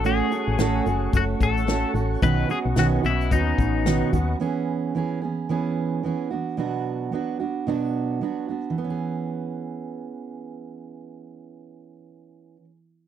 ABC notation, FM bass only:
X:1
M:4/4
L:1/16
Q:"Swing 16ths" 1/4=110
K:E
V:1 name="FM bass" clef=bass
A,,,2 z A,,, A,,,2 F,,,2 F,,,2 A,,,4 A,,,2 | B,,,2 z B,,, B,,,2 B,,,2 D,,2 A,,,4 D,,2 | z16 | z16 |
z16 | z16 |]